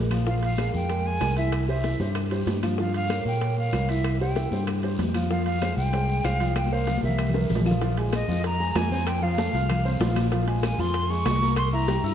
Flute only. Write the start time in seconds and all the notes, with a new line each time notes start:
0.29 F5
0.45 F5
0.75 G5
1.07 G#5
1.38 E5
1.69 E5
2.81 F5
2.96 F5
3.28 G5
3.59 F5
3.89 E5
4.21 G5
5.31 F5
5.46 F5
5.78 G5
6.25 F5
6.57 G5
6.73 F5
7.04 E5
8.15 D#5
8.46 A#5
8.77 G#5
9.08 G5
9.23 F5
10.65 G#5
10.80 C6
11.10 C#6
11.57 C6
11.73 A#5